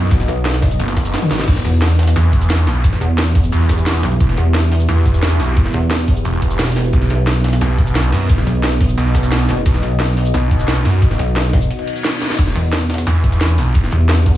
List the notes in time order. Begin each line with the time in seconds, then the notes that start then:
Already playing: B3 D#4 F#4 D#5
0.11 B1, kick, snare, closed hi-hat, shaker
0.20 snare
0.28 B1, closed hi-hat, shaker
0.45 snare, closed hi-hat, shaker
0.54 snare, closed hi-hat
0.62 kick, snare, closed hi-hat, open hi-hat, shaker
0.71 snare, shaker
0.79 F#1, closed hi-hat, shaker
0.88 snare, closed hi-hat
0.97 kick, snare, closed hi-hat, shaker
1.05 closed hi-hat, shaker
1.14 snare, closed hi-hat, shaker
1.22 snare, high tom
1.31 A1, snare, closed hi-hat, open hi-hat, shaker
1.39 snare
1.48 E1 B3 E4 G4 E5, kick, closed hi-hat, crash, shaker
1.56 snare
1.65 E2, closed hi-hat, shaker
1.82 snare, closed hi-hat, shaker
1.90 snare
1.99 snare, closed hi-hat, open hi-hat, shaker
2.03 snare, closed hi-hat
2.07 snare, closed hi-hat, shaker
2.16 E2, snare, closed hi-hat, shaker
2.33 kick, closed hi-hat, shaker
2.41 snare, shaker
2.50 snare, closed hi-hat, shaker
2.59 snare
2.67 B1, snare, closed hi-hat, open hi-hat, shaker
2.84 E1, kick, closed hi-hat, shaker
2.93 snare
3.01 E2, closed hi-hat, shaker
3.10 closed hi-hat
3.18 snare, closed hi-hat, shaker
3.27 snare
3.35 kick, closed hi-hat, open hi-hat, shaker
3.44 shaker
3.52 E2, closed hi-hat, open hi-hat, shaker
3.61 snare
3.69 kick, snare, closed hi-hat, shaker
3.78 snare, shaker
3.86 snare, closed hi-hat, shaker
3.95 snare
4.03 B1, snare, closed hi-hat, open hi-hat, shaker
4.12 snare
4.20 E1, kick, closed hi-hat, shaker
4.29 snare
4.37 E2, closed hi-hat, shaker
4.54 snare, closed hi-hat, shaker
4.63 snare
4.72 closed hi-hat, open hi-hat, shaker
4.80 shaker
4.89 E2, snare, closed hi-hat, shaker
5.06 kick, closed hi-hat, shaker
5.14 snare, shaker
5.23 snare, closed hi-hat, shaker
5.31 snare
5.40 B1, snare, closed hi-hat, open hi-hat, shaker
5.57 E1, kick, closed hi-hat, shaker
5.65 snare
5.74 E2, closed hi-hat, shaker
5.82 closed hi-hat
5.91 snare, closed hi-hat, shaker
5.99 snare
6.08 kick, closed hi-hat, open hi-hat, shaker
6.17 shaker
6.25 E1, closed hi-hat, open hi-hat, shaker
6.34 snare
6.42 kick, closed hi-hat, shaker
6.51 shaker
6.59 E1, snare, closed hi-hat, shaker
6.68 snare, closed hi-hat
6.72 snare, closed hi-hat
6.76 snare, closed hi-hat, open hi-hat, shaker
6.85 snare
6.93 B1 D#4 F#4 D#5, kick, closed hi-hat, shaker
7.02 snare
7.10 B1, closed hi-hat, shaker
7.27 snare, closed hi-hat, shaker
7.36 snare
7.44 snare, closed hi-hat, open hi-hat, shaker
7.48 snare, closed hi-hat
7.53 snare, closed hi-hat, shaker
7.61 B1, snare, closed hi-hat, shaker
7.78 kick, closed hi-hat, shaker
7.87 snare, shaker
7.95 snare, closed hi-hat, shaker
8.04 snare
8.12 F#2, snare, closed hi-hat, open hi-hat, shaker
8.29 B1, kick, closed hi-hat, shaker
8.38 snare
8.46 B1, closed hi-hat, shaker
8.55 closed hi-hat
8.64 snare, closed hi-hat, shaker
8.72 snare
8.81 kick, closed hi-hat, open hi-hat, shaker
8.89 shaker
8.98 B1, closed hi-hat, open hi-hat, shaker
9.06 snare
9.15 kick, snare, closed hi-hat, shaker
9.23 snare, shaker
9.32 snare, closed hi-hat, shaker
9.40 snare
9.49 F#1, snare, closed hi-hat, open hi-hat, shaker
9.57 snare
9.66 B1, kick, closed hi-hat, shaker
9.74 snare
9.83 B1, closed hi-hat, shaker
10.00 snare, closed hi-hat, shaker
10.09 snare
10.17 closed hi-hat, open hi-hat, shaker
10.25 shaker
10.34 B1, snare, closed hi-hat, shaker
10.51 kick, closed hi-hat, shaker
10.60 snare, shaker
10.68 snare, closed hi-hat, shaker
10.77 snare, closed hi-hat
10.85 F#2, snare, open hi-hat, shaker
10.94 closed hi-hat
11.02 B1, kick, closed hi-hat, shaker
11.11 snare
11.19 B1, closed hi-hat, shaker
11.28 closed hi-hat
11.36 snare, closed hi-hat, shaker
11.45 snare
11.53 kick, snare, closed hi-hat, open hi-hat, shaker
11.62 shaker
11.70 closed hi-hat, open hi-hat, reverse cymbal, shaker
11.79 snare
11.87 closed hi-hat, shaker
11.96 shaker
12.04 snare, closed hi-hat, shaker
12.13 snare
12.21 snare, closed hi-hat, open hi-hat, shaker
12.30 snare
12.39 E1 B3 E4 G4 E5, kick, closed hi-hat, crash, shaker
12.47 snare
12.56 E2, closed hi-hat, shaker
12.73 snare, closed hi-hat, shaker
12.81 snare
12.90 snare, closed hi-hat, open hi-hat, shaker
12.94 snare, closed hi-hat
12.98 snare, closed hi-hat, shaker
13.07 E2, snare, closed hi-hat, shaker
13.24 kick, closed hi-hat, shaker
13.32 snare, shaker
13.41 snare, closed hi-hat, shaker
13.49 snare
13.58 B1, snare, closed hi-hat, open hi-hat, shaker
13.75 E1, kick, closed hi-hat, shaker
13.84 snare
13.92 E2, closed hi-hat, shaker
14.01 closed hi-hat
14.09 snare, closed hi-hat, shaker
14.18 snare
14.26 kick, closed hi-hat, open hi-hat, shaker